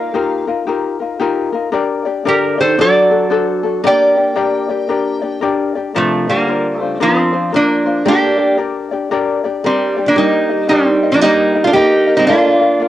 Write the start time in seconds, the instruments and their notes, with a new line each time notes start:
Already playing: steel-string acoustic guitar A#3, ukulele D#4 F4 A#4, resonator guitar played with a steel bar A#4 F5
0.14 ukulele D#4 F4 G4 A#4
0.47 ukulele D#4 F4 A#4
0.67 ukulele D#4 F4 G4 A#4
1.00 ukulele D#4 F4 A#4
1.20 ukulele D#4 F4 G4 A#4
1.52 ukulele D#4 F4 A#4
1.72 ukulele D4 G4 A#4 D5
2.05 ukulele D4 G4 D5
2.25 steel-string acoustic guitar D3, ukulele D4 G4 A#4 D5, resonator guitar played with a steel bar G4 A#4
2.58 steel-string acoustic guitar D#3, ukulele D4 G4 D5, resonator guitar played with a steel bar A4 C5
2.78 steel-string acoustic guitar F#3, ukulele D4 F#4 A4 C5, resonator guitar played with a steel bar A4 D5
3.11 ukulele D4 F#4 A4
3.30 ukulele D4 F#4 A4 C5
3.63 ukulele D4 F#4 A4
3.84 steel-string acoustic guitar A#3, ukulele D4 G4 A#4 D5, resonator guitar played with a steel bar D5 G5
4.17 ukulele D4 G4 D5
4.36 ukulele D4 G4 A#4 D5
4.69 ukulele D4 G4 D5
4.89 ukulele D4 G4 A#4 D5
5.22 ukulele D4 G4 D5
5.41 ukulele D4 G4 A#4 D5
5.75 ukulele D4 G4 D5
5.95 steel-string acoustic guitar C3, resonator guitar played with a steel bar F3 A3, ukulele D4 F4 A#4 C5
6.28 steel-string acoustic guitar D3, resonator guitar played with a steel bar G3 A#3, ukulele D4 F4 C5
6.47 ukulele D4 F4 A#4 C5
6.77 steel-string acoustic guitar C#3, resonator guitar played with a steel bar A3
6.81 ukulele D4 F4 C5
7.00 steel-string acoustic guitar F3, resonator guitar played with a steel bar F3 C4, ukulele D4 F4 A#4 C5
7.33 ukulele D4 F4 C5
7.52 steel-string acoustic guitar F3, ukulele D4 F4 A#4 C5, resonator guitar played with a steel bar D4
7.56 resonator guitar played with a steel bar A#3
7.86 ukulele D4 F4 C5
8.05 steel-string acoustic guitar A#3, ukulele D4 G4 A#4 D5, resonator guitar played with a steel bar D4 G4
8.38 ukulele D4 G4 D5
8.57 ukulele D4 G4 A#4 D5
8.91 ukulele D4 G4 D5
9.11 ukulele D4 G4 A#4 D5
9.44 ukulele D4 G4 D5
9.64 steel-string acoustic guitar G3, resonator guitar played with a steel bar G3 C4, ukulele D4 G4 A#4 D5
9.96 ukulele D4 G4 D5
10.06 steel-string acoustic guitar F3, resonator guitar played with a steel bar A#3 D4
10.16 steel-string acoustic guitar G3, resonator guitar played with a steel bar A#3 D#4, ukulele D#4 G4 A#4 D#5
10.49 ukulele D#4 A#4 D#5
10.68 steel-string acoustic guitar D#3, resonator guitar played with a steel bar G3 C4, ukulele D#4 G4 A#4 D#5
11.03 ukulele D#4 A#4 D#5
11.12 steel-string acoustic guitar F3, resonator guitar played with a steel bar A#3 D4
11.21 steel-string acoustic guitar G3, resonator guitar played with a steel bar A#3 D#4, ukulele D#4 G4 A#4 D#5
11.55 ukulele D#4 A#4 D#5
11.64 steel-string acoustic guitar A3, resonator guitar played with a steel bar D4 F4
11.74 steel-string acoustic guitar A#3, ukulele D#4 G4 A#4 D#5, resonator guitar played with a steel bar D#4 G4
12.07 ukulele D#4 A#4 D#5
12.17 steel-string acoustic guitar G3, resonator guitar played with a steel bar C4 D#4
12.27 steel-string acoustic guitar A#3, resonator guitar played with a steel bar D4 F4, ukulele F4 A#4 D5 F5
12.60 ukulele F4 A#4 F5
12.80 ukulele F4 A#4 D5 F5